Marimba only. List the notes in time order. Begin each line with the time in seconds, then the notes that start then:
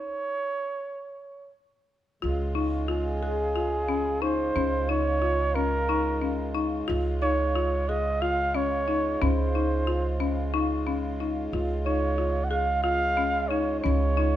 2.22 F4
2.55 D#4
2.88 F4
3.23 G#4
3.56 F4
3.89 C#4
4.22 D#4
4.56 C#4
4.89 D#4
5.22 F4
5.56 C#4
5.89 D#4
6.22 C#4
6.55 D#4
6.88 F4
7.22 D#4
7.56 F4
7.89 G#4
8.22 F4
8.55 C#4
8.88 D#4
9.22 C#4
9.55 D#4
9.87 F4
10.20 C#4
10.54 D#4
10.87 C#4
11.20 D#4
11.53 F4
11.86 D#4
12.18 F4
12.51 G#4
12.84 F4
13.17 C#4
13.51 D#4
13.84 C#4
14.17 D#4